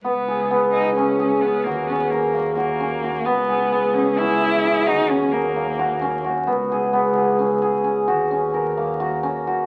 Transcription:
<<
  \new Staff \with { instrumentName = "Hammered dulcimer" } { \time 7/8 \key dis \phrygian \tempo 4 = 131 b8 gis'8 b8 gis'8 cis'8 gis'8 cis'8 | fis'8 cis'8 ais'8 ais8 fis'8 cis'8 fis'8 | b8 gis'8 b8 gis'8 cis'8 gis'8 cis'8 | fis'8 cis'8 ais'8 ais8 fis'8 cis'8 fis'8 |
b8 gis'8 b8 gis'8 cis'8 gis'8 cis'8 | fis'8 cis'8 ais'8 ais8 fis'8 cis'8 fis'8 | }
  \new Staff \with { instrumentName = "Cello" } { \time 7/8 \key dis \phrygian b4. dis'8 cis'4 b8 | ais8 b8 ais4 ais4. | b4. cis'8 e'4. | dis'8 cis'8 ais2 r8 |
r2. r8 | r2. r8 | }
  \new Staff \with { instrumentName = "Double bass" } { \clef bass \time 7/8 \key dis \phrygian cis,2.~ cis,8 | dis,2.~ dis,8 | cis,2.~ cis,8 | dis,2.~ dis,8 |
cis,2.~ cis,8 | dis,2.~ dis,8 | }
>>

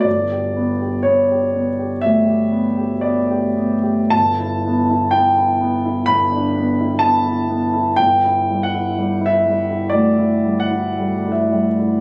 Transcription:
\new Staff \with { instrumentName = "Grand piano" } { \time 4/4 \key g \lydian \tempo 4 = 60 << { d''4 cis''4 e''4 d''4 | a''4 g''4 b''4 a''4 | \tuplet 3/2 { g''4 fis''8~ fis''8 e''4 d''4 fis''8~ fis''8 e''4 } | } \\ { g,,16 g'16 b16 g'16 b16 g'16 b16 g'16 d,16 g'16 b16 g'16 b16 g'16 b16 g'16 | g,,16 e'16 b16 e'16 b16 e'16 b16 e'16 g,,16 d'16 b16 e'16 b16 e'16 b16 e'16 | g,,16 e'16 g16 e'16 g16 e'16 g16 e'16 d,16 e'16 g16 e'16 g16 e'16 g16 e'16 | } >> }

